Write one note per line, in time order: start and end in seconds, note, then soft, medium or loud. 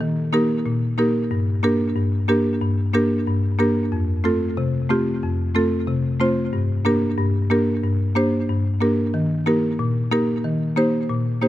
0.01 0.49 D#3 medium
0.33 0.46 A#3 medium
0.33 0.46 D#4 medium
0.33 0.46 G4 medium
0.33 0.47 A#4 medium
0.66 1.15 A#2 medium
0.98 1.11 A#3 medium
0.98 1.11 D#4 medium
0.98 1.12 G4 medium
0.98 1.12 A#4 medium
1.31 1.80 G2 medium
1.63 1.76 A#3 medium
1.63 1.77 D4 medium
1.63 1.77 G4 medium
1.63 1.77 A#4 loud
1.96 2.45 G2 medium
2.28 2.42 A#3 medium
2.28 2.42 D4 medium
2.28 2.42 G4 medium
2.28 2.42 A#4 medium
2.61 3.10 G2 medium
2.94 3.07 A#3 medium
2.94 3.07 D4 medium
2.94 3.07 G4 medium
2.94 3.08 A#4 loud
3.27 3.75 G2 medium
3.59 3.72 A#3 medium
3.59 3.72 D4 medium
3.59 3.73 G4 medium
3.59 3.73 A#4 medium
3.92 4.41 F2 medium
4.24 4.37 A3 medium
4.24 4.38 C4 medium
4.24 4.38 F4 medium
4.24 4.38 A4 medium
4.57 5.06 C3 medium
4.89 5.03 A3 medium
4.89 5.03 C4 medium
4.89 5.03 F4 medium
4.89 5.03 G4 medium
5.23 5.71 F2 medium
5.55 5.68 A3 medium
5.55 5.68 C4 medium
5.55 5.68 F4 medium
5.55 5.69 A4 loud
5.88 6.36 C3 medium
6.20 6.33 A3 medium
6.20 6.33 C4 medium
6.20 6.34 F4 medium
6.20 6.34 C5 medium
6.53 7.01 G2 medium
6.85 6.98 A#3 medium
6.85 6.98 D4 medium
6.85 6.99 G4 medium
6.85 6.99 A#4 medium
7.18 7.67 G2 medium
7.50 7.64 A#3 medium
7.50 7.64 D4 medium
7.50 7.64 G4 medium
7.50 7.64 A#4 loud
7.84 8.32 G2 medium
8.15 8.29 A#3 medium
8.15 8.29 D4 medium
8.15 8.29 G4 medium
8.15 8.29 C5 medium
8.49 8.97 G2 medium
8.81 8.94 A#3 medium
8.81 8.94 D4 medium
8.81 8.94 G4 medium
8.81 8.95 A#4 medium
9.14 9.62 D#3 medium
9.46 9.59 A#3 medium
9.46 9.60 D#4 medium
9.46 9.60 G4 medium
9.46 9.60 A#4 medium
9.79 10.28 A#2 medium
10.11 10.25 A#3 medium
10.11 10.25 D#4 medium
10.11 10.25 G4 medium
10.11 10.25 A#4 loud
10.44 10.93 D#3 medium
10.76 10.90 A#3 medium
10.76 10.90 D#4 medium
10.76 10.90 G4 medium
10.76 10.90 C5 loud
11.10 11.48 A#2 medium
11.42 11.48 A#3 medium
11.42 11.48 D#4 medium
11.42 11.48 G4 medium
11.42 11.48 C5 medium